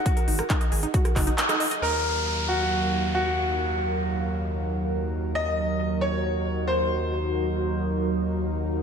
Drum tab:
HH |xxoxxxoxxxoxxxox|----------------|----------------|----------------|
CP |----x-----x-x---|----------------|----------------|----------------|
SD |---r-----r---r--|----------------|----------------|----------------|
BD |o---o---o-o-----|----------------|----------------|----------------|

HH |----------------|
CP |----------------|
SD |----------------|
BD |----------------|